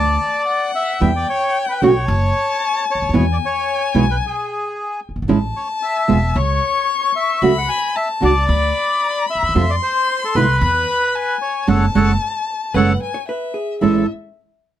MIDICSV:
0, 0, Header, 1, 6, 480
1, 0, Start_track
1, 0, Key_signature, 3, "major"
1, 0, Tempo, 533808
1, 902, Time_signature, 4, 2, 24, 8
1, 13308, End_track
2, 0, Start_track
2, 0, Title_t, "Violin"
2, 0, Program_c, 0, 40
2, 0, Note_on_c, 0, 81, 94
2, 417, Note_off_c, 0, 81, 0
2, 425, Note_on_c, 0, 78, 103
2, 908, Note_on_c, 0, 79, 110
2, 921, Note_off_c, 0, 78, 0
2, 1864, Note_off_c, 0, 79, 0
2, 1873, Note_on_c, 0, 81, 109
2, 2831, Note_on_c, 0, 80, 107
2, 2845, Note_off_c, 0, 81, 0
2, 4511, Note_off_c, 0, 80, 0
2, 4759, Note_on_c, 0, 81, 98
2, 5719, Note_on_c, 0, 85, 110
2, 5732, Note_off_c, 0, 81, 0
2, 6672, Note_on_c, 0, 83, 114
2, 6685, Note_off_c, 0, 85, 0
2, 7154, Note_on_c, 0, 81, 101
2, 7167, Note_off_c, 0, 83, 0
2, 7630, Note_off_c, 0, 81, 0
2, 7636, Note_on_c, 0, 83, 94
2, 8578, Note_on_c, 0, 84, 114
2, 8592, Note_off_c, 0, 83, 0
2, 9534, Note_off_c, 0, 84, 0
2, 9539, Note_on_c, 0, 83, 105
2, 10027, Note_on_c, 0, 80, 100
2, 10041, Note_off_c, 0, 83, 0
2, 10497, Note_on_c, 0, 81, 111
2, 10510, Note_off_c, 0, 80, 0
2, 11466, Note_on_c, 0, 78, 87
2, 11480, Note_off_c, 0, 81, 0
2, 11703, Note_off_c, 0, 78, 0
2, 11717, Note_on_c, 0, 80, 87
2, 11933, Note_off_c, 0, 80, 0
2, 11945, Note_on_c, 0, 76, 79
2, 12391, Note_off_c, 0, 76, 0
2, 12422, Note_on_c, 0, 76, 67
2, 12646, Note_off_c, 0, 76, 0
2, 13308, End_track
3, 0, Start_track
3, 0, Title_t, "Bandoneon"
3, 0, Program_c, 1, 23
3, 0, Note_on_c, 1, 74, 119
3, 640, Note_off_c, 1, 74, 0
3, 677, Note_on_c, 1, 76, 102
3, 1005, Note_off_c, 1, 76, 0
3, 1045, Note_on_c, 1, 74, 96
3, 1146, Note_off_c, 1, 74, 0
3, 1165, Note_on_c, 1, 73, 113
3, 1488, Note_off_c, 1, 73, 0
3, 1519, Note_on_c, 1, 71, 82
3, 1622, Note_off_c, 1, 71, 0
3, 1651, Note_on_c, 1, 73, 106
3, 2561, Note_off_c, 1, 73, 0
3, 2616, Note_on_c, 1, 73, 97
3, 2935, Note_off_c, 1, 73, 0
3, 2989, Note_on_c, 1, 74, 93
3, 3033, Note_off_c, 1, 74, 0
3, 3107, Note_on_c, 1, 73, 98
3, 3649, Note_off_c, 1, 73, 0
3, 3695, Note_on_c, 1, 71, 80
3, 3742, Note_off_c, 1, 71, 0
3, 3837, Note_on_c, 1, 68, 83
3, 4497, Note_off_c, 1, 68, 0
3, 5004, Note_on_c, 1, 73, 82
3, 5109, Note_off_c, 1, 73, 0
3, 5240, Note_on_c, 1, 76, 105
3, 5718, Note_on_c, 1, 73, 101
3, 5730, Note_off_c, 1, 76, 0
3, 6399, Note_off_c, 1, 73, 0
3, 6439, Note_on_c, 1, 76, 109
3, 6805, Note_off_c, 1, 76, 0
3, 6816, Note_on_c, 1, 78, 96
3, 6913, Note_on_c, 1, 80, 105
3, 6915, Note_off_c, 1, 78, 0
3, 7158, Note_off_c, 1, 80, 0
3, 7163, Note_on_c, 1, 76, 101
3, 7268, Note_off_c, 1, 76, 0
3, 7414, Note_on_c, 1, 74, 121
3, 8321, Note_off_c, 1, 74, 0
3, 8366, Note_on_c, 1, 76, 109
3, 8722, Note_on_c, 1, 74, 98
3, 8724, Note_off_c, 1, 76, 0
3, 8772, Note_off_c, 1, 74, 0
3, 8835, Note_on_c, 1, 72, 108
3, 9199, Note_off_c, 1, 72, 0
3, 9213, Note_on_c, 1, 69, 84
3, 9310, Note_off_c, 1, 69, 0
3, 9310, Note_on_c, 1, 71, 118
3, 10227, Note_off_c, 1, 71, 0
3, 10268, Note_on_c, 1, 73, 99
3, 10501, Note_off_c, 1, 73, 0
3, 10509, Note_on_c, 1, 78, 94
3, 10512, Note_on_c, 1, 69, 101
3, 10515, Note_on_c, 1, 73, 93
3, 10658, Note_off_c, 1, 78, 0
3, 10660, Note_off_c, 1, 69, 0
3, 10662, Note_off_c, 1, 73, 0
3, 10748, Note_on_c, 1, 78, 96
3, 10752, Note_on_c, 1, 73, 98
3, 10758, Note_on_c, 1, 69, 94
3, 10897, Note_off_c, 1, 78, 0
3, 10900, Note_off_c, 1, 73, 0
3, 10904, Note_off_c, 1, 69, 0
3, 11475, Note_on_c, 1, 73, 94
3, 11477, Note_on_c, 1, 78, 84
3, 11480, Note_on_c, 1, 69, 92
3, 11622, Note_off_c, 1, 73, 0
3, 11623, Note_off_c, 1, 78, 0
3, 11625, Note_off_c, 1, 69, 0
3, 12423, Note_on_c, 1, 69, 80
3, 12646, Note_off_c, 1, 69, 0
3, 13308, End_track
4, 0, Start_track
4, 0, Title_t, "Hollow-body jazz guitar"
4, 0, Program_c, 2, 26
4, 11460, Note_on_c, 2, 71, 88
4, 11815, Note_off_c, 2, 71, 0
4, 11819, Note_on_c, 2, 73, 98
4, 11864, Note_off_c, 2, 73, 0
4, 11950, Note_on_c, 2, 71, 88
4, 12175, Note_on_c, 2, 68, 72
4, 12193, Note_off_c, 2, 71, 0
4, 12402, Note_off_c, 2, 68, 0
4, 12426, Note_on_c, 2, 64, 67
4, 12648, Note_off_c, 2, 64, 0
4, 13308, End_track
5, 0, Start_track
5, 0, Title_t, "Nylon-string guitar"
5, 0, Program_c, 3, 24
5, 901, Note_on_c, 3, 47, 90
5, 906, Note_on_c, 3, 52, 95
5, 907, Note_on_c, 3, 55, 104
5, 908, Note_on_c, 3, 64, 84
5, 910, Note_on_c, 3, 59, 96
5, 982, Note_off_c, 3, 47, 0
5, 985, Note_off_c, 3, 52, 0
5, 985, Note_off_c, 3, 55, 0
5, 986, Note_off_c, 3, 64, 0
5, 987, Note_off_c, 3, 59, 0
5, 1634, Note_on_c, 3, 49, 89
5, 1636, Note_on_c, 3, 57, 92
5, 1638, Note_on_c, 3, 52, 94
5, 1643, Note_on_c, 3, 61, 104
5, 1647, Note_on_c, 3, 66, 107
5, 1708, Note_off_c, 3, 49, 0
5, 1709, Note_off_c, 3, 57, 0
5, 1710, Note_off_c, 3, 52, 0
5, 1713, Note_off_c, 3, 61, 0
5, 1715, Note_off_c, 3, 66, 0
5, 2817, Note_on_c, 3, 52, 83
5, 2819, Note_on_c, 3, 47, 89
5, 2819, Note_on_c, 3, 59, 90
5, 2820, Note_on_c, 3, 56, 87
5, 2827, Note_on_c, 3, 64, 107
5, 2900, Note_off_c, 3, 52, 0
5, 2901, Note_off_c, 3, 47, 0
5, 2901, Note_off_c, 3, 56, 0
5, 2901, Note_off_c, 3, 59, 0
5, 2905, Note_off_c, 3, 64, 0
5, 3545, Note_on_c, 3, 47, 95
5, 3546, Note_on_c, 3, 52, 84
5, 3550, Note_on_c, 3, 56, 102
5, 3556, Note_on_c, 3, 64, 94
5, 3557, Note_on_c, 3, 59, 103
5, 3625, Note_off_c, 3, 47, 0
5, 3625, Note_off_c, 3, 52, 0
5, 3627, Note_off_c, 3, 56, 0
5, 3630, Note_off_c, 3, 64, 0
5, 3631, Note_off_c, 3, 59, 0
5, 4747, Note_on_c, 3, 52, 91
5, 4752, Note_on_c, 3, 56, 93
5, 4755, Note_on_c, 3, 61, 91
5, 4756, Note_on_c, 3, 64, 99
5, 4828, Note_off_c, 3, 52, 0
5, 4830, Note_off_c, 3, 56, 0
5, 4832, Note_off_c, 3, 61, 0
5, 4832, Note_off_c, 3, 64, 0
5, 5466, Note_on_c, 3, 49, 78
5, 5468, Note_on_c, 3, 53, 89
5, 5468, Note_on_c, 3, 56, 87
5, 5473, Note_on_c, 3, 59, 87
5, 5473, Note_on_c, 3, 65, 91
5, 5548, Note_off_c, 3, 49, 0
5, 5549, Note_off_c, 3, 56, 0
5, 5550, Note_off_c, 3, 53, 0
5, 5552, Note_off_c, 3, 59, 0
5, 5552, Note_off_c, 3, 65, 0
5, 6670, Note_on_c, 3, 49, 93
5, 6674, Note_on_c, 3, 54, 86
5, 6675, Note_on_c, 3, 61, 92
5, 6676, Note_on_c, 3, 57, 94
5, 6678, Note_on_c, 3, 66, 103
5, 6751, Note_off_c, 3, 49, 0
5, 6752, Note_off_c, 3, 54, 0
5, 6753, Note_off_c, 3, 61, 0
5, 6754, Note_off_c, 3, 57, 0
5, 6755, Note_off_c, 3, 66, 0
5, 7378, Note_on_c, 3, 50, 87
5, 7381, Note_on_c, 3, 57, 94
5, 7389, Note_on_c, 3, 66, 104
5, 7392, Note_on_c, 3, 62, 98
5, 7464, Note_off_c, 3, 50, 0
5, 7465, Note_off_c, 3, 57, 0
5, 7469, Note_off_c, 3, 66, 0
5, 7471, Note_off_c, 3, 62, 0
5, 8585, Note_on_c, 3, 48, 98
5, 8590, Note_on_c, 3, 53, 92
5, 8590, Note_on_c, 3, 57, 93
5, 8593, Note_on_c, 3, 65, 101
5, 8597, Note_on_c, 3, 60, 108
5, 8665, Note_off_c, 3, 48, 0
5, 8667, Note_off_c, 3, 53, 0
5, 8667, Note_off_c, 3, 57, 0
5, 8669, Note_off_c, 3, 65, 0
5, 8670, Note_off_c, 3, 60, 0
5, 9310, Note_on_c, 3, 47, 85
5, 9314, Note_on_c, 3, 50, 96
5, 9320, Note_on_c, 3, 56, 98
5, 9325, Note_on_c, 3, 59, 99
5, 9327, Note_on_c, 3, 64, 114
5, 9386, Note_off_c, 3, 47, 0
5, 9389, Note_off_c, 3, 50, 0
5, 9391, Note_off_c, 3, 56, 0
5, 9394, Note_off_c, 3, 59, 0
5, 9395, Note_off_c, 3, 64, 0
5, 10497, Note_on_c, 3, 56, 100
5, 10501, Note_on_c, 3, 61, 99
5, 10502, Note_on_c, 3, 57, 99
5, 10651, Note_off_c, 3, 56, 0
5, 10653, Note_off_c, 3, 61, 0
5, 10654, Note_off_c, 3, 57, 0
5, 10747, Note_on_c, 3, 56, 111
5, 10749, Note_on_c, 3, 57, 114
5, 10752, Note_on_c, 3, 61, 104
5, 10897, Note_off_c, 3, 56, 0
5, 10898, Note_off_c, 3, 57, 0
5, 10898, Note_off_c, 3, 61, 0
5, 11468, Note_on_c, 3, 57, 93
5, 11469, Note_on_c, 3, 61, 100
5, 11470, Note_on_c, 3, 56, 98
5, 11617, Note_off_c, 3, 61, 0
5, 11618, Note_off_c, 3, 57, 0
5, 11619, Note_off_c, 3, 56, 0
5, 12419, Note_on_c, 3, 45, 79
5, 12420, Note_on_c, 3, 52, 92
5, 12424, Note_on_c, 3, 56, 97
5, 12431, Note_on_c, 3, 61, 97
5, 12438, Note_on_c, 3, 64, 98
5, 12613, Note_off_c, 3, 45, 0
5, 12613, Note_off_c, 3, 52, 0
5, 12616, Note_off_c, 3, 56, 0
5, 12619, Note_off_c, 3, 61, 0
5, 12622, Note_off_c, 3, 64, 0
5, 13308, End_track
6, 0, Start_track
6, 0, Title_t, "Upright bass"
6, 0, Program_c, 4, 32
6, 0, Note_on_c, 4, 38, 110
6, 146, Note_off_c, 4, 38, 0
6, 913, Note_on_c, 4, 40, 100
6, 1109, Note_off_c, 4, 40, 0
6, 1636, Note_on_c, 4, 35, 96
6, 1830, Note_off_c, 4, 35, 0
6, 1872, Note_on_c, 4, 30, 111
6, 2068, Note_off_c, 4, 30, 0
6, 2655, Note_on_c, 4, 37, 47
6, 2708, Note_off_c, 4, 37, 0
6, 2717, Note_on_c, 4, 38, 64
6, 2769, Note_off_c, 4, 38, 0
6, 2780, Note_on_c, 4, 39, 77
6, 2828, Note_off_c, 4, 39, 0
6, 2834, Note_on_c, 4, 40, 99
6, 3030, Note_off_c, 4, 40, 0
6, 3549, Note_on_c, 4, 35, 95
6, 3748, Note_off_c, 4, 35, 0
6, 4575, Note_on_c, 4, 30, 47
6, 4631, Note_off_c, 4, 30, 0
6, 4639, Note_on_c, 4, 31, 67
6, 4691, Note_off_c, 4, 31, 0
6, 4696, Note_on_c, 4, 32, 76
6, 4752, Note_off_c, 4, 32, 0
6, 4760, Note_on_c, 4, 33, 94
6, 4956, Note_off_c, 4, 33, 0
6, 5481, Note_on_c, 4, 28, 98
6, 5678, Note_off_c, 4, 28, 0
6, 5716, Note_on_c, 4, 37, 103
6, 5915, Note_off_c, 4, 37, 0
6, 6672, Note_on_c, 4, 37, 97
6, 6872, Note_off_c, 4, 37, 0
6, 7398, Note_on_c, 4, 37, 99
6, 7594, Note_off_c, 4, 37, 0
6, 7632, Note_on_c, 4, 38, 108
6, 7831, Note_off_c, 4, 38, 0
6, 8410, Note_on_c, 4, 38, 50
6, 8467, Note_off_c, 4, 38, 0
6, 8475, Note_on_c, 4, 39, 66
6, 8527, Note_off_c, 4, 39, 0
6, 8533, Note_on_c, 4, 40, 73
6, 8588, Note_off_c, 4, 40, 0
6, 8593, Note_on_c, 4, 41, 103
6, 8789, Note_off_c, 4, 41, 0
6, 9309, Note_on_c, 4, 36, 98
6, 9506, Note_off_c, 4, 36, 0
6, 9545, Note_on_c, 4, 40, 116
6, 9744, Note_off_c, 4, 40, 0
6, 10505, Note_on_c, 4, 30, 104
6, 10680, Note_off_c, 4, 30, 0
6, 10748, Note_on_c, 4, 30, 96
6, 10922, Note_off_c, 4, 30, 0
6, 11458, Note_on_c, 4, 30, 102
6, 11637, Note_off_c, 4, 30, 0
6, 12435, Note_on_c, 4, 33, 59
6, 12630, Note_off_c, 4, 33, 0
6, 13308, End_track
0, 0, End_of_file